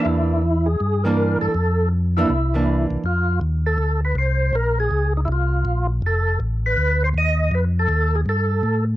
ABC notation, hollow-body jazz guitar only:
X:1
M:4/4
L:1/8
Q:"Swing" 1/4=161
K:F
V:1 name="Hollow-body jazz guitar"
[E,B,D]2 z3 [E,B,D]3 | z3 [E,B,D] z [E,B,D]3 | z8 | z8 |
z8 | z8 |]